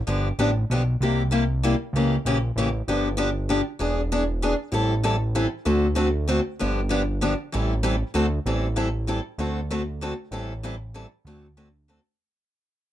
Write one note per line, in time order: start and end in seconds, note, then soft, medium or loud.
0.07 0.32 G1 medium
0.07 0.27 D3 medium
0.07 0.27 F3 medium
0.07 0.27 B3 medium
0.07 0.27 D4 medium
0.07 0.28 G4 medium
0.39 0.65 A1 medium
0.39 0.49 D3 medium
0.39 0.49 F3 medium
0.39 0.50 B3 medium
0.39 0.50 D4 medium
0.39 0.50 G4 medium
0.70 0.96 B1 medium
0.70 0.81 D3 medium
0.70 0.81 F3 medium
0.70 0.82 B3 medium
0.70 0.81 D4 medium
0.70 0.82 G4 medium
1.01 1.75 C2 loud
1.01 1.21 C3 medium
1.01 1.21 G3 medium
1.01 1.22 A#3 medium
1.01 1.22 E4 medium
1.01 1.22 G4 medium
1.31 1.42 C3 medium
1.31 1.43 G3 medium
1.31 1.43 A#3 medium
1.31 1.43 E4 medium
1.31 1.43 G4 medium
1.63 1.74 C3 medium
1.63 1.74 G3 medium
1.63 1.74 A#3 medium
1.63 1.74 E4 medium
1.63 1.75 G4 medium
1.93 2.18 C#2 loud
1.93 2.15 C#3 medium
1.93 2.15 E3 medium
1.93 2.15 A#3 medium
1.93 2.15 C#4 medium
1.93 2.15 G4 medium
2.25 2.51 A#1 medium
2.25 2.36 C#3 medium
2.25 2.37 E3 medium
2.25 2.37 A#3 medium
2.25 2.37 C#4 medium
2.25 2.37 G4 loud
2.56 2.82 A1 medium
2.56 2.68 C#3 medium
2.56 2.68 E3 medium
2.56 2.68 A#3 medium
2.56 2.68 C#4 medium
2.56 2.68 G4 medium
2.88 3.62 G1 medium
2.88 3.08 D3 medium
2.88 3.08 F3 medium
2.88 3.08 B3 medium
2.88 3.08 D4 medium
2.88 3.08 G4 medium
3.17 3.28 D3 medium
3.17 3.29 F3 medium
3.17 3.29 B3 loud
3.17 3.29 D4 medium
3.17 3.29 G4 loud
3.49 3.60 D3 medium
3.49 3.60 F3 medium
3.49 3.60 B3 medium
3.49 3.60 D4 medium
3.49 3.61 G4 medium
3.79 4.54 E1 medium
3.79 4.00 E3 medium
3.79 4.00 B3 medium
3.79 4.00 D4 medium
3.79 4.01 G#4 medium
4.12 4.22 E3 medium
4.12 4.23 B3 medium
4.12 4.23 D4 loud
4.12 4.23 G#4 medium
4.42 4.53 E3 medium
4.42 4.54 B3 medium
4.42 4.54 D4 medium
4.42 4.54 G#4 medium
4.72 5.47 A1 medium
4.72 4.92 E3 medium
4.72 4.93 G3 medium
4.72 4.93 C4 medium
4.72 4.93 E4 medium
4.72 4.94 A4 medium
5.03 5.15 E3 medium
5.03 5.15 G3 medium
5.03 5.15 C4 medium
5.03 5.15 E4 medium
5.03 5.15 A4 medium
5.35 5.46 E3 medium
5.35 5.46 G3 medium
5.35 5.46 C4 medium
5.35 5.46 E4 medium
5.35 5.46 A4 medium
5.65 6.41 D2 loud
5.65 5.86 D3 medium
5.65 5.86 A3 medium
5.65 5.86 C4 medium
5.65 5.87 F#4 medium
5.65 5.86 A4 medium
5.95 6.07 D3 medium
5.95 6.08 A3 medium
5.95 6.08 C4 medium
5.95 6.08 F#4 loud
5.95 6.08 A4 medium
6.28 6.39 D3 medium
6.28 6.39 A3 medium
6.28 6.39 C4 medium
6.28 6.40 F#4 medium
6.28 6.40 A4 medium
6.59 7.35 G1 medium
6.59 6.79 D3 medium
6.59 6.80 F3 medium
6.59 6.80 B3 medium
6.59 6.80 D4 medium
6.59 6.80 G4 medium
6.89 7.01 D3 medium
6.89 7.01 F3 medium
6.89 7.01 B3 loud
6.89 7.01 D4 loud
6.89 7.02 G4 medium
7.21 7.32 D3 medium
7.21 7.33 F3 medium
7.21 7.33 B3 medium
7.21 7.33 D4 medium
7.21 7.33 G4 loud
7.52 8.03 A1 medium
7.52 7.72 E3 medium
7.52 7.73 G3 medium
7.52 7.73 C4 medium
7.52 7.73 E4 medium
7.52 7.73 A4 medium
7.83 7.94 E3 medium
7.83 7.94 G3 medium
7.83 7.94 C4 medium
7.83 7.95 E4 medium
7.83 7.95 A4 medium
8.14 8.40 D2 medium
8.14 8.25 D3 medium
8.14 8.26 A3 medium
8.14 8.26 C4 medium
8.14 8.26 F#4 medium
8.14 8.26 A4 loud
8.45 9.20 A1 medium
8.45 8.66 E3 medium
8.45 8.66 G3 medium
8.45 8.66 C4 medium
8.45 8.66 E4 medium
8.45 8.66 A4 medium
8.76 8.87 E3 medium
8.76 8.87 G3 medium
8.76 8.88 C4 medium
8.76 8.88 E4 medium
8.76 8.88 A4 medium
9.07 9.18 E3 medium
9.07 9.19 G3 medium
9.07 9.19 C4 medium
9.07 9.19 E4 medium
9.07 9.19 A4 medium
9.38 10.13 D2 medium
9.38 9.59 D3 medium
9.38 9.59 A3 medium
9.38 9.59 C4 medium
9.38 9.59 F#4 medium
9.38 9.60 A4 medium
9.71 9.81 D3 medium
9.71 9.81 A3 medium
9.71 9.81 C4 medium
9.71 9.82 F#4 medium
9.71 9.82 A4 medium
10.01 10.12 D3 medium
10.01 10.12 A3 medium
10.01 10.13 C4 medium
10.01 10.13 F#4 medium
10.01 10.13 A4 medium
10.31 11.06 A1 medium
10.31 10.52 E3 medium
10.31 10.52 G3 medium
10.31 10.52 C4 medium
10.31 10.53 E4 medium
10.31 10.52 A4 medium
10.63 10.74 E3 medium
10.63 10.74 G3 medium
10.63 10.75 C4 medium
10.63 10.75 E4 medium
10.63 10.75 A4 medium
10.94 11.05 E3 medium
10.94 11.06 G3 medium
10.94 11.05 C4 medium
10.94 11.05 E4 medium
10.94 11.06 A4 medium
11.25 11.99 D2 medium
11.25 11.46 D3 medium
11.25 11.46 A3 medium
11.25 11.46 C4 medium
11.25 11.46 F#4 medium
11.25 11.46 A4 medium
11.57 11.68 D3 medium
11.57 11.67 A3 medium
11.57 11.68 C4 medium
11.57 11.68 F#4 medium
11.57 11.68 A4 medium
11.88 11.99 D3 medium
11.88 11.99 A3 medium
11.88 11.99 C4 medium
11.88 11.99 F#4 medium
11.88 11.99 A4 medium